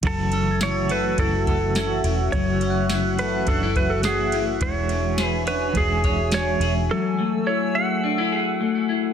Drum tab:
RD |xxxxxxxx|xxxxxxxx|xxxxxxxx|--------|
TB |--x---x-|--x---x-|--x---x-|--------|
SD |--o---o-|--o---o-|--o---o-|--------|
BD |o---oo--|o---oo--|o---oo--|--------|